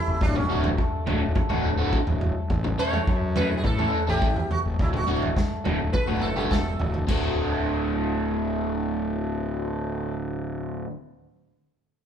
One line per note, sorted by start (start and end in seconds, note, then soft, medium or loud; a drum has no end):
0.00 0.19 E3 medium
0.00 7.05 A3 medium
0.00 0.20 C#4 medium
0.00 0.22 E4 medium
0.00 0.20 A4 medium
0.08 0.19 F#1 medium
0.21 0.45 D1 loud
0.21 2.49 F#3 medium
0.21 0.36 D4 medium
0.21 2.49 D4 medium
0.21 7.05 A4 medium
0.21 kick loud
0.21 floor tom medium
0.35 0.63 C#4 medium
0.35 muted overdriven electric guitar stroke soft
0.35 mid tom medium
0.49 0.74 D1 medium
0.49 0.68 A2 medium
0.49 0.68 D3 medium
0.49 0.69 A3 medium
0.49 0.69 F#4 medium
0.64 floor tom medium
0.78 muted overdriven electric guitar stroke soft
0.78 kick loud
1.07 1.31 D1 medium
1.07 1.21 A2 medium
1.07 1.21 D3 medium
1.07 1.21 A3 medium
1.07 1.20 F#4 medium
1.07 floor tom medium
1.07 mid tom medium
1.22 muted overdriven electric guitar stroke soft
1.35 muted overdriven electric guitar stroke soft
1.35 kick loud
1.35 floor tom medium
1.50 1.97 D1 medium
1.50 1.69 A2 medium
1.50 1.69 D3 medium
1.50 1.69 A3 medium
1.50 1.69 F#4 medium
1.50 floor tom medium
1.79 1.98 A2 medium
1.79 1.98 D3 medium
1.79 1.97 A3 medium
1.79 1.97 F#4 medium
1.93 kick loud
2.07 2.31 D1 medium
2.07 floor tom medium
2.21 floor tom medium
2.50 2.74 A1 medium
2.50 4.78 E3 medium
2.50 4.77 C#4 medium
2.50 kick loud
2.50 floor tom medium
2.64 muted overdriven electric guitar stroke soft
2.64 mid tom medium
2.79 2.97 A3 medium
2.79 2.98 C#4 medium
2.79 2.98 E4 medium
2.79 2.98 A4 medium
2.79 3.36 C#5 loud
2.93 floor tom medium
3.07 3.65 F#2 medium
3.07 muted overdriven electric guitar stroke soft
3.07 kick loud
3.36 3.50 A3 medium
3.36 3.50 C#4 medium
3.36 3.50 E4 medium
3.36 3.50 A4 medium
3.36 3.57 B4 medium
3.36 floor tom medium
3.36 mid tom medium
3.51 muted overdriven electric guitar stroke soft
3.57 3.64 G#4 medium
3.64 3.88 A2 medium
3.64 4.09 A4 medium
3.64 muted overdriven electric guitar stroke soft
3.64 kick medium
3.64 floor tom medium
3.78 3.98 A3 medium
3.78 3.98 C#4 medium
3.78 3.98 E4 medium
3.78 3.97 A4 medium
3.78 floor tom medium
4.07 4.32 A1 medium
4.07 4.27 A3 medium
4.07 4.26 C#4 medium
4.07 4.26 E4 medium
4.07 4.51 G4 medium
4.07 4.26 A4 medium
4.22 kick loud
4.36 floor tom medium
4.51 4.59 F#4 medium
4.51 floor tom medium
4.66 4.77 F#1 medium
4.79 5.03 D1 medium
4.79 7.07 F#3 medium
4.79 7.07 D4 medium
4.79 4.87 E4 medium
4.79 kick loud
4.79 floor tom medium
4.93 5.22 F#4 medium
4.93 muted overdriven electric guitar stroke soft
4.93 mid tom medium
5.07 5.32 D1 medium
5.07 5.26 A2 medium
5.07 5.26 D3 medium
5.07 5.27 A3 medium
5.07 5.27 F#4 medium
5.07 mid tom medium
5.22 floor tom medium
5.36 muted overdriven electric guitar stroke soft
5.36 kick loud
5.36 snare medium
5.36 floor tom medium
5.65 5.89 D1 medium
5.65 5.80 A2 medium
5.65 5.79 D3 medium
5.65 5.79 A3 medium
5.65 5.79 F#4 medium
5.65 floor tom medium
5.65 mid tom medium
5.80 muted overdriven electric guitar stroke soft
5.93 6.21 B4 medium
5.93 muted overdriven electric guitar stroke soft
5.93 kick loud
5.93 high tom medium
6.08 6.20 D1 medium
6.08 6.27 A2 medium
6.08 6.27 D3 medium
6.08 6.27 A3 medium
6.08 6.27 F#4 medium
6.08 high tom medium
6.21 6.49 F#1 medium
6.21 6.36 A4 medium
6.36 6.56 A2 medium
6.36 6.56 D3 medium
6.36 6.55 A3 medium
6.36 6.55 F#4 medium
6.36 6.41 G4 medium
6.36 mid tom medium
6.50 6.77 E1 medium
6.50 7.04 A4 medium
6.50 kick loud
6.50 snare medium
6.80 7.06 D1 medium
6.80 floor tom medium
6.94 floor tom medium
7.07 10.85 D1 medium
7.07 10.88 D2 medium
7.07 10.89 A2 medium
7.07 10.89 D3 medium
7.07 10.15 F#3 medium
7.07 10.15 A3 medium
7.07 10.90 A3 medium
7.07 10.14 D4 medium
7.07 10.14 A4 medium
7.07 kick loud
7.07 crash medium
7.12 10.90 F#4 medium